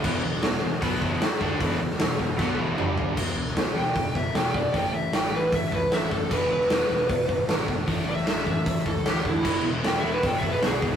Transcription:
<<
  \new Staff \with { instrumentName = "Lead electric guitar" } { \time 4/4 \key a \major \tempo 4 = 153 r1 | r1 | r4. g''4 e''8 g''8 d''8 | g''8 e''8 g''8 b'8 e''8 b'8 e''8 a'8 |
b'8 b'2. r8 | r8 e''2 a'8 g'8 e'8~ | e'8 r8 \tuplet 3/2 { g''8 e''8 b'8 g''8 e''8 b'8 } gis'8 r8 | }
  \new Staff \with { instrumentName = "Distorted electric guitar" } { \clef bass \time 4/4 \key a \major <e, b, e>8 <e, b,>8 <e, b,>8 <e, b,>8 <b, fis b>8 <e, b, e>8 r8 <d a d'>8 | <e, b, e>8 <e, b,>8 <e, b,>8 <e, b,>8 <b, fis b>8 <e, b, e>8 <g, d g>4 | <e, b, e>8 <e, b,>8 <e, b,>8 <e, b,>8 <e, b,>8 <e, b,>8 <e, b,>8 <e, b,>8 | <a, e a>8 <a, e>8 <a, e>8 <a, e>8 <a, e>8 <a, e>8 <a, e>8 <a, e>8 |
<e, b, e>8 <e, b,>8 <e, b,>8 <e, b,>8 <e, b,>8 <e, b,>8 <e, b,>8 <e, b,>8 | <a, e a>8 <a, e>8 <a, e>8 <a, e>8 <a, e>8 <a, e>8 <a, e>8 <a, e>8 | <e, b, e>8 <e, b,>8 <e, b,>8 <e, b,>8 <e, b,>8 <e, b,>8 <e, b,>8 <e, b,>8 | }
  \new Staff \with { instrumentName = "Distorted electric guitar" } { \clef bass \time 4/4 \key a \major <e, b, e>8 <e, b,>8 <e, b,>8 <e, b,>8 <b, fis b>8 <e, b, e>8 r8 <d a d'>8 | <e, b, e>8 <e, b,>8 <e, b,>8 <e, b,>8 <b, fis b>8 <e, b, e>8 <g, d g>4 | r1 | r1 |
r1 | r1 | <e gis b e'>4. <e gis b e'>2~ <e gis b e'>8 | }
  \new Staff \with { instrumentName = "Overdriven electric guitar" } { \clef bass \time 4/4 \key a \major <e, b, e>8 <e, b,>8 <e, b,>8 <e, b,>8 <b, fis b>8 <e, b, e>8 r8 <d a d'>8 | <e, b, e>8 <e, b,>8 <e, b,>8 <e, b,>8 <b, fis b>8 <e, b, e>8 <g, d g>4 | <e, b, e>8 <e, b,>8 <e, b,>8 <e, b,>8 <e, b,>8 <e, b,>8 <e, b,>8 <e, b,>8 | <a, e a>8 <a, e>8 <a, e>8 <a, e>8 <a, e>8 <a, e>8 <a, e>8 <a, e>8 |
<e, b, e>8 <e, b,>8 <e, b,>8 <e, b,>8 <e, b,>8 <e, b,>8 <e, b,>8 <e, b,>8 | <a, e a>8 <a, e>8 <a, e>8 <a, e>8 <a, e>8 <a, e>8 <a, e>8 <a, e>8 | <e, b, e>8 <e, b,>8 <e, b,>8 <e, b,>8 <e, b,>8 <e, b,>8 <e, b,>8 <e, b,>8 | }
  \new Staff \with { instrumentName = "Picked electric bass" } { \clef bass \time 4/4 \key a \major e,,8 e,,8 e,,8 e,,8 b,,8 e,,8 r8 d,8 | e,,8 e,,8 e,,8 e,,8 b,,8 e,,8 g,,4 | e,,8 e,,8 e,,8 e,,8 e,,8 gis,,8 e,,4 | a,,8 a,,8 a,,8 a,,8 a,,8 cis,8 a,,4 |
e,,8 e,,8 e,,8 e,,8 e,,8 gis,,8 gis,,4 | a,,8 a,,8 a,,8 a,,8 a,,8 cis,8 d,4 | e,,8 e,,8 e,,8 e,,8 e,,8 gis,,8 b,,4 | }
  \new DrumStaff \with { instrumentName = "Drums" } \drummode { \time 4/4 <cymc bd>8. sn16 <hho sn>4 <hho bd>8 bd8 <hho sn>8 bd8 | <hho bd>16 sn8 sn16 <hho sn>8 bd8 <bd sn>4 toml8 tomfh8 | <cymc bd>8. sn16 <hho sn>4 <hho bd>8 bd8 <hho sn>8 bd8 | <hho bd>4 <hho sn>4 <hho bd>8 bd8 <hho sn>8 bd8 |
<cymc bd>8. sn16 <hho sn>4 <hho bd>8 bd8 <hho sn>8 bd8 | <hho bd>16 sn8 sn16 <hho sn>8 bd8 <hho bd>8 bd8 <hho sn>8 bd8 | <cymc bd>4 <hho sn>4 <hho bd>8 bd8 <hho sn>8 bd8 | }
>>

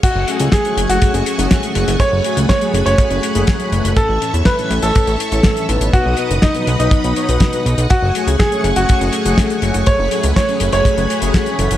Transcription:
<<
  \new Staff \with { instrumentName = "String machine" } { \time 4/4 \key fis \minor \tempo 4 = 122 << { cis'''1 | b''1 | cis'''1 | dis'''1 |
cis'''1 | b''1 | } \\ { <a fis'' gis''>1~ | <a fis'' gis''>1 | <a' cis'' e''>1 | <b' dis'' fis''>1 |
<a gis''>1~ | <a gis''>1 | } >> }
  \new Staff \with { instrumentName = "Grand piano" } { \time 4/4 \key fis \minor fis'8. r16 gis'8 r16 fis'2 r16 | cis''8. r16 cis''8 r16 cis''2 r16 | a'8. r16 b'8 r16 a'2 r16 | fis'8. r16 dis'8 r16 dis'2 r16 |
fis'8. r16 gis'8 r16 fis'2 r16 | cis''8. r16 cis''8 r16 cis''2 r16 | }
  \new Staff \with { instrumentName = "Analog polysynth" } { \time 4/4 \key fis \minor r8 <fis a cis' gis'>16 r8 <fis a cis' gis'>8. <fis a cis' gis'>8. <fis a cis' gis'>8. <fis a cis' gis'>8~ | <fis a cis' gis'>8 <fis a cis' gis'>16 r8 <fis a cis' gis'>8. <fis a cis' gis'>8. <fis a cis' gis'>8. <a, e a cis' a'>8~ | <a, e a cis' a'>8 <a, e a cis' a'>16 r8 <a, e a cis' a'>8. <a, e a cis' a'>8. <a, e a cis' a'>8. <b, fis b dis' b'>8~ | <b, fis b dis' b'>8 <b, fis b dis' b'>16 r8 <b, fis b dis' b'>8. <b, fis b dis' b'>8 <b, fis b dis' cis''>16 <b, fis b dis' b'>8 <b, fis b dis' b'>16 r8 |
r8 <fis a cis' gis'>16 r8 <fis a cis' gis'>8. <fis a cis' gis'>8. <fis a cis' gis'>8. <fis a cis' gis'>8~ | <fis a cis' gis'>8 <fis a cis' gis'>16 r8 <fis a cis' gis'>8. <fis a cis' gis'>8. <fis a cis' gis'>8. <a, e a cis' a'>8 | }
  \new Staff \with { instrumentName = "Analog synth bass" } { \clef bass \time 4/4 \key fis \minor r16 fis,,16 r16 cis,16 r8 fis,,16 fis,,16 r16 fis,,16 r16 fis,,16 r8 fis,,16 fis,,16 | r16 fis,,16 r16 cis,16 r8 fis,,16 fis,,16 r16 fis,,16 r16 fis,,16 r8 fis,,16 fis,,16 | r16 a,,16 r16 e,16 r8 a,,16 a,,16 r16 a,,16 r16 a,,16 r8 a,,16 a,,16 | r16 b,,16 r16 fis,,16 r8 b,,16 b,,16 r16 b,,16 r16 b,,16 r8 b,,16 b,,16 |
r16 fis,,16 r16 cis,16 r8 fis,,16 fis,,16 r16 fis,,16 r16 fis,,16 r8 fis,,16 fis,,16 | r16 fis,,16 r16 cis,16 r8 fis,,16 fis,,16 r16 fis,,16 r16 fis,,16 r8 fis,,16 fis,,16 | }
  \new DrumStaff \with { instrumentName = "Drums" } \drummode { \time 4/4 <cymc hh bd>8 hh16 hh16 <hh bd sn>16 hh16 hh16 hh16 <hh bd>16 hh16 hh16 hh16 <hh bd sn>16 hh16 hh16 hh16 | <hh bd>8 hh16 hh16 <hh bd sn>16 hh16 hh16 hh16 <hh bd>16 hh16 hh16 hh16 <hh bd sn>16 hh16 hh16 hh16 | <hh bd>8 hh16 hh16 <hh bd sn>16 hh16 hh16 hh16 <hh bd>16 hh16 hh16 hh16 <hh bd sn>16 hh16 hh16 hh16 | <hh bd>8 hh16 hh16 <hh bd sn>16 hh16 hh16 hh16 <hh bd>16 hh16 hh16 hh16 <hh bd sn>16 hh16 hh16 hh16 |
<hh bd>8 hh16 hh16 <hh bd sn>16 hh16 hh16 hh16 <hh bd>16 hh16 hh16 hh16 <hh bd sn>16 hh16 hh16 hh16 | <hh bd>8 hh16 hh16 <hh bd sn>16 hh16 hh16 hh16 <hh bd>16 hh16 hh16 hh16 <hh bd sn>16 hh16 hh16 hh16 | }
>>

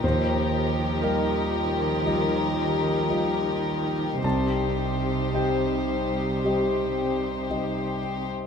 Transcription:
<<
  \new Staff \with { instrumentName = "Violin section" } { \time 4/4 \key c \dorian \tempo 4 = 57 <g' bes'>1 | <g' c''>1 | }
  \new Staff \with { instrumentName = "Grand piano" } { \time 4/4 \key c \dorian << { c''4 bes'4 r2 | a''4 g''2~ g''8 r8 | } \\ { ees,4 <g f' ees''>4 <g f' ees''>4 <g f' ees''>4 | c,4 <g g' ees''>4 <g g' ees''>4 <g g' ees''>4 | } >> }
  \new Staff \with { instrumentName = "Viola section" } { \time 4/4 \key c \dorian <f ees'>1 | <g ees'>1 | }
  \new Staff \with { instrumentName = "Cello section" } { \clef bass \time 4/4 \key c \dorian ees1 | c1 | }
>>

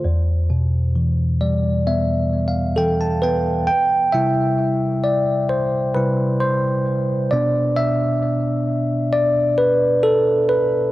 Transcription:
<<
  \new Staff \with { instrumentName = "Tine electric piano" } { \time 4/4 \key c \major \tempo 4 = 66 << { r4. d''8 \tuplet 3/2 { e''4 f''8 } g''16 a''16 g''8 | r1 | r1 | } \\ { r2. a'8 b'8 | g''8 e''4 d''8 c''8 b'8 c''8. r16 | d''8 e''4. d''8 b'8 a'8 b'8 | } >> }
  \new Staff \with { instrumentName = "Tine electric piano" } { \clef bass \time 4/4 \key c \major e,8 b,8 e8 g8 b4 e8 b8 | r8 <c g e'>4. r8 <c g e'>8 r4 | <b, b d'>8 r2. r8 | }
>>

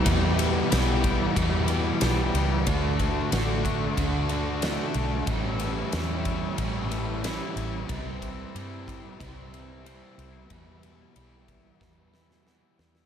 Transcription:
<<
  \new Staff \with { instrumentName = "Overdriven electric guitar" } { \time 4/4 \key e \dorian \tempo 4 = 92 <e g b e'>4 <e g b e'>4 <e g b e'>8 <g b e'>8 <e g b e'>4 | <d a d' fis'>4 <d a d' fis'>4 <d a d' fis'>8 <a d' fis'>8 <d a d' fis'>4 | <a, e g cis' e'>4 <e g cis' e'>4 <a, e g cis' e'>8 <g cis' e'>8 <e g cis' e'>4 | <c g c' e'>4 <c g c' e'>4 <c g c' e'>8 <g c' e'>8 <c g c' e'>4 |
<e g b e'>4 <e g b e'>4 <e g b e'>8 <g b e'>8 <e g b e'>4 | }
  \new Staff \with { instrumentName = "Overdriven electric guitar" } { \time 4/4 \key e \dorian <e, b, e g b g'>8 <e g b g'>8 <e g b g'>8 <e g b g'>8 <e, b, e g b g'>8 <e g b g'>8 <e g b g'>8 <e g b g'>8 | <d a d' fis'>8 <a d' fis'>8 <d a d' fis'>8 <a d' fis'>8 <d a d' fis'>8 <a d' fis'>8 <d a d' fis'>8 <a d' fis'>8 | <a, e g cis' e'>8 <g cis' e'>8 <e g cis' e'>8 <g cis' e'>8 <a, e g cis' e'>8 <g cis' e'>8 <e g cis' e'>8 <g cis' e'>8 | <c e g c' e'>8 <g c' e'>8 <e g c' e'>8 <g c' e'>8 <c e g c' e'>8 <g c' e'>8 <e g c' e'>8 <g c' e'>8 |
<e, b, e g b e'>8 <e g b e'>8 <e g b e'>8 <e g b e'>8 <e, b, e g b e'>8 <e g b e'>8 <e g b e'>8 <e g b e'>8 | }
  \new Staff \with { instrumentName = "Fingered electric bass" } { \clef bass \time 4/4 \key e \dorian e,4 b,,4 e,4 b,,8 cis,8 | d,4 a,,4 d,4. b,,8 | a,,4 e,4 a,,4. a,,8 | c,4 g,4 c,4. c,8 |
e,4 b,,4 e,4. e,8 | }
  \new DrumStaff \with { instrumentName = "Drums" } \drummode { \time 4/4 <bd cymr>8 cymr8 <cymr sn>8 <bd cymr>8 <bd cymr>8 cymr8 <cymr sn>8 cymr8 | <bd cymr>8 <bd cymr>8 <cymr sn>8 <bd cymr>8 <bd cymr>8 cymr8 <cymr sn>8 cymr8 | <bd cymr>8 cymr8 <cymr sn>8 <bd cymr>8 <bd cymr>8 cymr8 <cymr sn>8 cymr8 | <bd cymr>8 <bd cymr>8 cymr8 <bd cymr>8 <bd cymr>8 cymr8 cymr8 cymr8 |
<bd cymr>8 cymr8 cymr8 <bd cymr>8 <bd sn>8 sn16 sn16 sn8 sn16 sn16 | }
>>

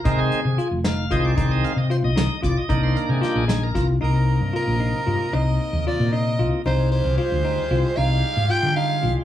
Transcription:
<<
  \new Staff \with { instrumentName = "Soprano saxophone" } { \time 5/8 \key c \minor \tempo 4 = 114 r2 r8 | r2 r8 | r2 r8 | bes'4 bes'4. |
ees''4 d''8 ees''8. r16 | c''8 c''8 c''4. | f''4 g''8 f''8. r16 | }
  \new Staff \with { instrumentName = "Tonewheel organ" } { \time 5/8 \key c \minor bes'16 aes'4 r16 f''8 ees''16 d''16~ | d''16 ees''16 f''16 ees''16 c''16 ees''8. d''16 ees''16~ | ees''16 c''16 bes'16 aes'16 g'16 aes'8 bes'8 r16 | <c bes ees'>2~ <c bes ees'>8~ |
<c bes ees'>2~ <c bes ees'>8 | <g aes f'>2~ <g aes f'>8~ | <g aes f'>2~ <g aes f'>8 | }
  \new Staff \with { instrumentName = "Tonewheel organ" } { \clef bass \time 5/8 \key c \minor <ees aes c'>8 r4. <ees aes c'>8 | <ees aes c'>8 r2 | <ees bes d'>4. r4 | r2 r8 |
r2 r8 | r2 r8 | r2 r8 | }
  \new Staff \with { instrumentName = "Tine electric piano" } { \time 5/8 \key c \minor ees'4 f'8 ees'8 f'8 | ees'4 f'8 ees'8 f'8 | ees'4 f'8 ees'8 f'8 | ees'4 f'8 ees'8 f'8 |
ees'4 f'8 ees'8 f'8 | ees'4 f'8 ees'8 f'8 | ees'4 f'8 ees'8 f'8 | }
  \new Staff \with { instrumentName = "Fretless electric bass" } { \clef bass \time 5/8 \key c \minor c8 r16 c16 r16 f,,8. c,8 | c,8 r16 c8 c,8 r16 c,16 r16 | c,8 r16 c16 r16 bes,,8. c,8 | c,8. g,16 r16 bes,,8 r16 g,16 r16 |
c,8 r16 ees,16 r16 bes,8. c,16 r16 | c,8. c,16 r16 d,8 r16 c,16 r16 | c,8 r16 aes,16 r16 d8. c,16 r16 | }
  \new DrumStaff \with { instrumentName = "Drums" } \drummode { \time 5/8 <hh bd>8 hh8 hh8 <hh sn>8 <hh bd>8 | <hh bd>8 hh8 hh8 <hh sn>8 <hh bd sn>8 | <hh bd>8 hh8 <hh sn>8 <hh sn>8 <hh bd sn>8 | r4. r4 |
r4. r4 | r4. r4 | r4. r4 | }
>>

